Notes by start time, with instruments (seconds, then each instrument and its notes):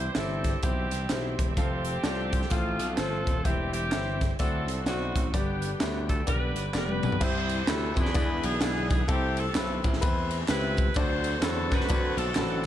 Already playing: grand piano C3, tonewheel organ E3 G3 C4 G4, saxophone section E4 G4 C5
0.15 slap bass G1, grand piano C4 E4 G4 E5, saxophone section C4 E4 A4, snare, clap, closed hi-hat, tambourine
0.44 kick, snare, closed hi-hat, tambourine
0.63 slap bass B1, grand piano C4 E4 G4 C5, saxophone section C4 E4 G4, kick, closed hi-hat, tambourine
0.91 slap bass C2, closed hi-hat, tambourine
1.09 slap bass B1, grand piano C4 E4 G4 C5, snare, clap, closed hi-hat, tambourine
1.39 slap bass E1, kick, closed hi-hat, tambourine
1.57 slap bass F1, tonewheel organ F3 A3 C4 A4, grand piano C4 F4 A4 F5, saxophone section C4 G4, kick, closed hi-hat, tambourine
1.85 closed hi-hat, tambourine
2.04 slap bass C2, grand piano C4 F4 A4 D5, snare, clap, closed hi-hat, tambourine
2.33 kick, closed hi-hat, tambourine
2.42 snare
2.50 slap bass A1, saxophone section A3 C4 F4, grand piano C4 F4 A4 F5, kick, closed hi-hat, tambourine
2.79 slap bass B1, closed hi-hat, tambourine
2.97 slap bass G1, saxophone section C4 F4 A4, grand piano C4 F4 A4 C5, snare, clap, closed hi-hat, tambourine
3.27 slap bass D#1, kick, closed hi-hat, tambourine
3.44 slap bass E1, tonewheel organ E3 G3 C4 G4, grand piano E3 C4 E4 G4 E5, saxophone section C4 E4 G4, kick, closed hi-hat, tambourine
3.73 saxophone section C4 E4 G4, closed hi-hat, tambourine
3.92 slap bass G1, grand piano C4 E4 G4 E5, snare, clap, closed hi-hat, tambourine
4.21 kick, snare, closed hi-hat, tambourine
4.39 slap bass D2, grand piano D3 C4 E4 F#4 D5, tonewheel organ D3 F#3 C4 E4, saxophone section C4 F#4 A4, kick, closed hi-hat, tambourine
4.67 slap bass C2, saxophone section A4, closed hi-hat, tambourine
4.86 slap bass B1, saxophone section A3 C4 F#4, grand piano C4 E4 F#4 D5, snare, clap, closed hi-hat, tambourine
5.15 slap bass A1, kick, closed hi-hat, tambourine
5.33 slap bass G1, grand piano G2 B3 D4 G4 D5, tonewheel organ D3 G3 B3 F#4, saxophone section B3 D4 G4, kick, closed hi-hat, tambourine
5.40 tonewheel organ G4
5.62 closed hi-hat, tambourine
5.80 slap bass D2, grand piano B3 D4 G4 E5, snare, clap, closed hi-hat, tambourine
6.09 saxophone section A4, kick, closed hi-hat, tambourine
6.27 slap bass B1, grand piano B3 D4 G4 D5, saxophone section D4 G4 B4, kick, closed hi-hat, tambourine
6.56 slap bass G1, closed hi-hat, tambourine
6.73 slap bass F1, grand piano B3 D4 G4 D5, saxophone section D4, snare, clap, tambourine
6.77 saxophone section G4 B4
6.89 high tom
7.03 slap bass B1, mid tom, tambourine
7.12 floor tom
7.20 slap bass C2, grand piano C3 E4 G4 C5, tonewheel organ G3 C4 E4, saxophone section E4 G4 C5, kick, crash, tambourine
7.49 ride, tambourine
7.67 slap bass D2, grand piano E4 G4 B4, saxophone section A4, snare, clap, ride, tambourine
7.96 slap bass F2, saxophone section D4 G#4 B4, kick, ride, tambourine
8.05 snare
8.14 slap bass E2, tonewheel organ D3 E3 G#3 B3 E4, grand piano E3 B3 D4 E4 G#4 D5, kick, ride, tambourine
8.43 slap bass B1, saxophone section B3 D4 G#4, ride, tambourine
8.61 slap bass B1, grand piano B3 D4 E4 G#4 D5, snare, clap, ride, tambourine
8.90 saxophone section G#4, kick, ride, tambourine
9.08 slap bass C2, grand piano C3 C4 E4 A4, tonewheel organ A3 B3 E4, saxophone section C4 E4 G4, kick, ride, tambourine
9.15 tonewheel organ C4
9.37 saxophone section C4 E4 A4, ride, tambourine
9.55 slap bass B1, grand piano C4 E4 B4, snare, clap, ride, tambourine
9.84 slap bass A1, kick, ride, tambourine
9.93 snare
10.01 slap bass E2, grand piano C4 E4 B4, kick, ride, tambourine
10.31 ride, tambourine
10.48 slap bass C#2, grand piano C4 E4 G4, saxophone section E4 B4, snare, clap, ride, tambourine
10.77 kick, ride, tambourine
10.94 slap bass D2, grand piano D3 C4 D4 F#4 A4 D5, tonewheel organ D3 F#3 A3 C4 E4, saxophone section F#4 A4 C5, kick, ride, tambourine
11.03 tonewheel organ F#4
11.24 ride, tambourine
11.42 slap bass E2, grand piano C4 D4 F#4 A4 B4, saxophone section A4, snare, clap, ride, tambourine
11.71 slap bass F#2, saxophone section F#4 B4, kick, snare, ride, tambourine
11.81 snare
11.88 slap bass D2, grand piano C4 D4 F#4 A4 D5, kick, ride, tambourine
12.17 slap bass B1, saxophone section C4 F#4 A4, ride, tambourine
12.35 slap bass A1, grand piano C4 D4 F#4 A4 B4, snare, clap, ride, tambourine